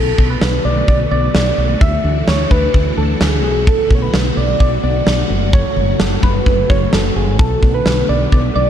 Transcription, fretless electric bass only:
0.00 0.11 B1 medium
0.18 0.35 B1 medium
0.42 0.58 B1 medium
0.65 0.81 B1 medium
0.88 1.04 B1 medium
1.11 1.28 B1 loud
1.35 1.51 B1 loud
1.58 1.74 B1 medium
1.81 1.97 D2 loud
2.04 2.21 D2 loud
2.28 2.44 D2 loud
2.51 2.67 D2 medium
2.74 2.91 D2 loud
2.97 3.14 D2 loud
3.21 3.44 D2 loud
3.44 3.77 B1 medium
3.91 4.07 B1 loud
4.14 4.30 B1 medium
4.37 4.53 B1 medium
4.60 4.77 B1 medium
4.83 5.00 B1 loud
5.07 5.23 B1 loud
5.30 5.63 F#1 medium
5.77 5.93 F#1 loud
6.00 6.16 F#1 loud
6.23 6.39 F#1 medium
6.46 6.63 F#1 medium
6.70 6.86 F#1 loud
6.93 7.09 F#1 medium
7.16 7.39 F#1 medium
7.39 7.56 B1 medium
7.63 7.79 B1 loud
7.86 8.02 B1 medium
8.09 8.25 B1 loud
8.32 8.49 B1 medium
8.56 8.70 B1 loud

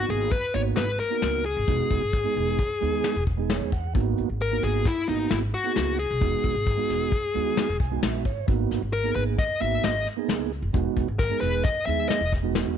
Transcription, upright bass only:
0.09 0.29 G#1 medium
0.55 0.75 G#1 medium
0.77 0.98 G#1 medium
1.22 1.53 C#2 medium
1.57 1.67 G#1 medium
1.68 1.78 E1 medium
1.91 2.01 E1 medium
2.02 2.23 G#1 medium
2.36 2.57 E1 medium
2.82 3.02 D#2 medium
3.16 3.57 E1 medium
3.61 3.92 E2 medium
3.95 4.15 G#1 loud
4.18 4.28 G#1 medium
4.29 4.60 G#1 medium
4.63 4.83 G#1 medium
5.09 5.29 G#1 medium
5.31 5.51 G#1 medium
5.76 6.07 C#2 medium
6.11 6.21 B1 medium
6.21 6.32 E1 medium
6.44 6.54 E1 medium
6.55 6.76 G#1 medium
6.90 7.10 E1 medium
7.35 7.55 D#2 medium
7.69 7.79 E1 medium
7.80 8.00 B1 medium
8.03 8.23 A#1 medium
8.25 8.45 G#1 medium
8.48 8.68 G#1 medium
8.71 8.81 G#1 medium
8.82 9.13 G#1 medium
9.16 9.36 G#1 medium
9.61 9.81 G#1 medium
9.83 10.04 G#1 medium
10.28 10.59 C#2 medium
10.62 10.73 F#1 medium
10.74 10.84 E1 medium
10.97 11.07 E1 medium
11.08 11.28 G#1 medium
11.42 11.62 E1 medium
11.87 12.07 D#2 medium
12.21 12.62 E1 medium
12.66 12.78 E2 medium

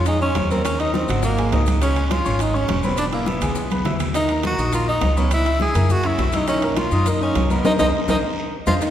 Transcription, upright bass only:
0.00 0.33 F2 medium
0.36 1.03 D#2 medium
1.09 1.49 G#1 medium
1.52 2.20 C#2 medium
2.26 2.66 G#1 loud
2.69 3.37 E1 medium
3.41 3.82 B1 medium
3.85 4.53 D#2 medium
4.57 4.99 A#1 medium
5.02 5.70 C#2 medium
5.75 6.16 F#2 medium
6.18 6.86 B1 medium
6.92 7.33 F#2 medium
7.35 7.63 C2 medium
7.66 7.76 C2 medium
7.80 7.91 C2 medium
8.08 8.19 C2 medium
8.67 8.78 F2 medium

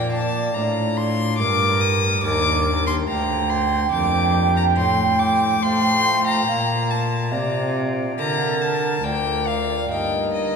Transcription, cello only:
0.00 0.53 A#2 medium
0.55 1.41 A2 medium
1.40 2.23 G2 medium
2.23 3.06 D#2 medium
3.07 3.90 D2 medium
3.92 4.79 F2 medium
4.77 5.62 A2 medium
5.62 6.46 A3 medium
6.47 7.34 A#2 medium
7.32 8.17 C3 medium
8.17 9.02 D3 medium
9.03 9.88 D2 medium
9.89 10.56 G2 medium

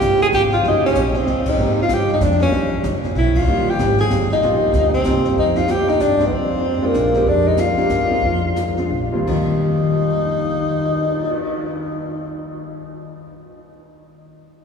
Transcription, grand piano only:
0.00 0.17 G#3 medium
0.00 0.17 C4 medium
0.00 0.17 D#4 medium
0.00 0.17 F4 medium
0.00 0.17 G4 medium
0.64 1.11 G#3 medium
0.64 1.11 A#3 medium
0.64 1.11 C#4 medium
0.64 1.11 E4 medium
0.64 1.11 F#4 medium
1.58 1.75 G#3 medium
1.58 1.75 A#3 medium
1.58 1.76 C4 medium
1.58 1.76 D#4 medium
1.58 1.76 G4 medium
2.40 2.51 G#3 medium
2.40 2.51 A#3 medium
2.40 2.51 B3 medium
2.40 2.51 D4 medium
2.40 2.52 F#4 medium
3.47 3.94 G3 medium
3.47 3.94 A#3 medium
3.47 3.94 C4 medium
3.47 3.94 D#4 medium
3.47 3.95 F4 medium
4.42 4.89 G3 medium
4.42 4.89 A#3 medium
4.42 4.89 C4 medium
4.42 4.89 D#4 medium
4.42 4.89 F4 medium
5.06 5.37 G3 medium
5.06 5.37 A#3 medium
5.06 5.37 C4 medium
5.06 5.37 D#4 medium
5.06 5.37 F4 medium
5.88 5.98 A#3 medium
5.88 5.98 D4 medium
5.88 5.98 F4 medium
5.88 5.98 G4 medium
6.20 6.30 G#3 medium
6.20 6.30 C4 medium
6.20 6.30 D#4 medium
6.20 6.30 G4 medium
6.82 7.11 G#3 medium
6.82 7.11 C4 medium
6.82 7.12 D4 medium
6.82 7.12 F4 medium
7.15 7.55 G#3 medium
7.15 7.55 C4 medium
7.15 7.56 D#4 medium
7.15 7.56 G4 medium
7.78 7.88 A#3 medium
7.78 7.88 D4 medium
7.78 7.89 F4 medium
7.78 7.89 G4 medium
8.10 8.21 G#3 medium
8.10 8.21 C4 medium
8.10 8.22 D#4 medium
8.10 8.22 G4 medium
8.78 8.90 G#3 medium
8.78 8.90 C4 medium
8.78 8.90 D4 medium
8.78 8.90 F4 medium
9.12 9.24 D#2 medium
9.12 9.26 G3 medium
9.12 9.62 A#3 medium
9.12 9.27 C4 medium
9.12 9.27 F4 medium
9.26 13.00 D#2 medium
9.26 13.00 D#3 medium
9.26 13.01 G3 medium
9.26 13.01 C4 medium
9.26 13.01 F4 medium

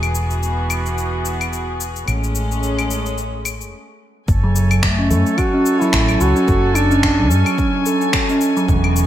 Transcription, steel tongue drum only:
4.44 4.50 F#3 loud
4.56 4.70 F#3 medium
4.99 5.09 C#4 medium
5.11 5.52 A4 medium
5.54 5.61 C#4 loud
5.82 5.88 F#3 medium
6.36 6.47 C#4 medium
6.48 6.90 A4 medium
6.91 6.98 C#4 loud
7.19 7.26 F#3 loud
7.31 7.46 F#3 medium
7.74 7.85 C#4 medium
7.86 8.28 A4 medium
8.29 8.36 C#4 medium
8.57 8.64 F#3 loud
8.69 8.83 E3 medium

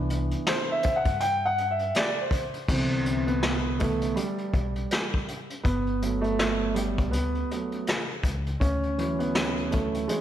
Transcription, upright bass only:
0.00 0.32 C2 loud
1.05 1.91 G2 medium
2.68 4.13 C2 medium
4.54 4.83 B1 medium
5.65 7.13 G1 medium
7.13 7.43 D2 medium
8.23 8.53 C#2 medium
8.61 10.05 D2 medium

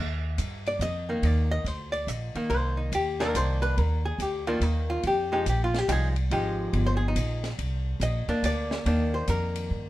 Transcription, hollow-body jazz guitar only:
0.68 0.81 D5 medium
0.82 1.08 D#5 medium
1.09 1.63 D#3 medium
1.09 1.63 A#3 medium
1.25 1.51 D5 medium
1.51 1.67 D#5 medium
1.67 1.92 C5 medium
1.92 2.09 D5 medium
2.09 2.35 D#5 medium
2.35 2.90 D#3 medium
2.35 2.90 A#3 medium
2.50 2.77 C5 medium
2.77 2.92 D#4 soft
2.95 3.20 G4 medium
3.20 3.74 D#3 medium
3.20 3.75 A#3 medium
3.20 3.75 D4 medium
3.20 3.35 A#4 medium
3.36 3.62 C5 medium
3.62 3.79 B4 medium
3.79 4.05 A#4 medium
4.05 4.22 G#4 medium
4.22 4.47 G4 medium
4.47 5.02 D#3 medium
4.47 5.02 A#3 medium
4.47 4.63 D4 medium
4.47 4.62 F4 medium
4.63 4.89 D#4 medium
4.90 5.04 F4 medium
5.07 5.33 G4 medium
5.32 5.45 F3 medium
5.32 5.46 G#3 medium
5.32 5.46 D#4 medium
5.32 5.46 G4 medium
5.32 5.47 G#4 medium
5.49 5.62 G4 medium
5.64 5.78 F4 medium
5.78 5.88 G4 medium
5.88 6.13 F3 medium
5.88 6.14 G#3 medium
5.88 6.14 D#4 medium
5.88 5.92 G4 medium
5.92 6.08 G#4 medium
6.31 7.50 F3 medium
6.31 7.50 G#3 medium
6.31 7.07 D#4 medium
6.31 6.86 G4 medium
6.87 6.96 C5 medium
6.97 7.06 G#4 medium
7.08 7.48 D#4 medium
8.03 8.41 D#5 medium
8.29 8.83 A#3 medium
8.29 8.83 D4 medium
8.45 9.10 D5 medium
8.86 9.89 D#3 medium
8.86 9.89 A#3 medium
8.86 9.89 D4 medium
9.14 9.28 C5 medium
9.30 9.89 A#4 medium

